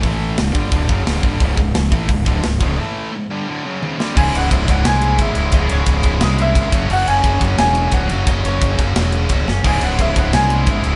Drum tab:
CC |--------|--------|--------|x-------|
RD |--------|--------|--------|-xxxxxxx|
HH |o-o-o-o-|o-o-o-o-|--------|--------|
SD |--o---o-|--o---o-|-------o|----o---|
T1 |--------|--------|------o-|--------|
BD |o--ooo-o|oo-ooo-o|--------|o-oo--o-|

CC |--------|x-------|--------|x-------|
RD |xxxxxxxx|-xxxxxxx|xxxxxxx-|-xxxxxxx|
HH |--------|--------|--------|--------|
SD |----o---|----o---|----o--o|----o---|
T1 |--------|--------|--------|--------|
BD |o-oo--oo|--oo--o-|o-oo--o-|o-oo--o-|